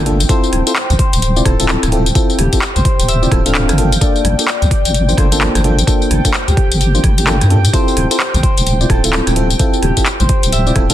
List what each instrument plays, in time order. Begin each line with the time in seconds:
Already playing: wobble bass G1, harp A4 D5 E5 G5, analog synth pad G5
0.06 fm electric piano A#3 D4 F4 A4, open hi-hat
0.20 closed hi-hat, tambourine
0.29 fm electric piano C4 E4 F4 A4, harp C5, analog synth pad G5, kick, closed hi-hat, tambourine
0.44 tambourine
0.53 wobble bass D1, cross-stick, open hi-hat
0.67 fm electric piano C4 E4 F4 A4, harp C5, closed hi-hat, tambourine
0.76 clap, tambourine
0.90 wobble bass A1, closed hi-hat, tambourine
0.99 harp C5, kick, open hi-hat
1.13 wobble bass D1, closed hi-hat, tambourine
1.22 closed hi-hat, tambourine
1.36 fm electric piano C4 E4 F4 D5, tambourine
1.45 wobble bass D1, fm electric piano C4 E4 F4 A4, harp A4, kick, cross-stick, open hi-hat
1.60 fm electric piano C4 E4 F4 A4, closed hi-hat, tambourine
1.69 clap, tambourine
1.83 wobble bass D1, cross-stick, closed hi-hat, tambourine
1.92 fm electric piano C4 E4 F4 A4, open hi-hat
2.06 closed hi-hat, tambourine
2.15 fm electric piano C4 E4 F4 A4, kick, closed hi-hat, tambourine
2.30 tambourine
2.39 wobble bass D1, harp G4, cross-stick, open hi-hat
2.53 fm electric piano C4 E4 F4 A4, kick, closed hi-hat, tambourine
2.62 clap, tambourine
2.76 wobble bass A1, harp C5, closed hi-hat, tambourine
2.85 kick, open hi-hat
2.99 wobble bass D1, closed hi-hat, tambourine
3.08 harp E5, closed hi-hat, tambourine
3.22 fm electric piano C4 E4 F4 D5, tambourine
3.32 wobble bass D1, fm electric piano C4 E4 F4 A4, kick, cross-stick, open hi-hat
3.46 fm electric piano C4 D4 F4 A4, harp F5, closed hi-hat, tambourine
3.55 clap, tambourine
3.69 wobble bass G1, cross-stick, closed hi-hat, tambourine
3.78 fm electric piano A#3 D4 F4 A4, open hi-hat
3.92 closed hi-hat, tambourine
4.01 fm electric piano A#3 D4 F4 A4, harp D5, kick, closed hi-hat, tambourine
4.16 tambourine
4.25 wobble bass G1, cross-stick, open hi-hat
4.39 fm electric piano A#3 D4 F4 A4, harp D5, closed hi-hat, tambourine
4.48 clap, tambourine
4.62 wobble bass D2, closed hi-hat, tambourine
4.71 harp D5, kick, open hi-hat
4.85 wobble bass G1, closed hi-hat, tambourine
4.94 closed hi-hat, tambourine
5.08 fm electric piano A#3 D4 F4 C5, tambourine
5.17 wobble bass G1, fm electric piano A#3 D4 F4 A4, harp C5, kick, cross-stick, open hi-hat
5.32 fm electric piano A#3 D4 F4 A4, closed hi-hat, tambourine
5.41 clap, tambourine
5.55 wobble bass G1, cross-stick, closed hi-hat, tambourine
5.64 fm electric piano A#3 D4 F4 A4, open hi-hat
5.79 closed hi-hat, tambourine
5.87 fm electric piano A#3 D4 F4 A4, kick, closed hi-hat, tambourine
6.02 tambourine
6.10 wobble bass G1, harp A4, cross-stick, open hi-hat
6.25 fm electric piano A#3 D4 F4 A4, kick, closed hi-hat, tambourine
6.34 clap, tambourine
6.48 wobble bass D2, harp G4, closed hi-hat, tambourine
6.57 kick, open hi-hat
6.71 wobble bass G1, closed hi-hat, tambourine
6.80 harp G4, closed hi-hat, tambourine
6.94 fm electric piano A#3 D4 F4 C5, tambourine
7.04 wobble bass G1, kick, cross-stick, open hi-hat
7.17 harp G4, closed hi-hat, tambourine
7.27 fm electric piano A#3 D4 F4 A4, clap, tambourine
7.41 wobble bass G2, cross-stick, closed hi-hat, tambourine
7.50 fm electric piano A#3 D4 F4 A4, open hi-hat
7.65 closed hi-hat, tambourine
7.73 fm electric piano C4 E4 F4 A4, harp C5, kick, closed hi-hat, tambourine
7.88 tambourine
7.97 wobble bass D1, cross-stick, open hi-hat
8.10 fm electric piano C4 E4 F4 A4, harp C5, closed hi-hat, tambourine
8.20 clap, tambourine
8.34 wobble bass A1, closed hi-hat, tambourine
8.43 harp C5, kick, open hi-hat
8.57 wobble bass D1, closed hi-hat, tambourine
8.67 closed hi-hat, tambourine
8.81 fm electric piano C4 E4 F4 D5, tambourine
8.89 wobble bass D1, fm electric piano C4 E4 F4 A4, harp A4, kick, cross-stick, open hi-hat
9.04 fm electric piano C4 E4 F4 A4, closed hi-hat, tambourine
9.13 clap, tambourine
9.27 wobble bass D1, cross-stick, closed hi-hat, tambourine
9.36 fm electric piano C4 E4 F4 A4, open hi-hat
9.50 closed hi-hat, tambourine
9.59 fm electric piano C4 E4 F4 A4, kick, closed hi-hat, tambourine
9.73 tambourine
9.82 wobble bass D1, harp G4, cross-stick, open hi-hat
9.97 fm electric piano C4 E4 F4 A4, kick, closed hi-hat, tambourine
10.06 clap, tambourine
10.20 wobble bass A1, harp C5, closed hi-hat, tambourine
10.29 kick, open hi-hat
10.43 wobble bass D1, closed hi-hat, tambourine
10.52 harp E5, closed hi-hat, tambourine
10.67 fm electric piano C4 E4 F4 D5, tambourine
10.76 wobble bass D1, fm electric piano C4 E4 F4 A4, kick, cross-stick, open hi-hat
10.89 fm electric piano C4 D4 F4 A4, harp F5, closed hi-hat, tambourine